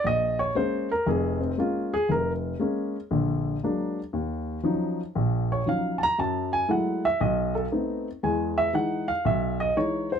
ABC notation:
X:1
M:4/4
L:1/8
Q:"Swing" 1/4=117
K:Bbm
V:1 name="Grand piano"
e d c B A C F A | B z6 z | [K:Ebm] z4 z d f [=ab] | =a _a g _f ^d =A z2 |
^g =e _g f e ^d _d =c |]
V:2 name="Grand piano" clef=bass
B,,,2 [A,B,D] z [F,,,F,,]2 [A,B,D] z | F,,,2 [A,B,D] z [B,,,=D,]2 [G,A,B,=D] z | [K:Ebm] E,,2 [F,G,DE] z [B,,,B,,]2 [F,G,DE] z | [G,,G,]2 [G,A,=A,_F] z =B,,,2 [A,=B,=C^D] z |
[=E,,^G,]2 [=E,G,^D] z =B,,,2 [E,G,D] z |]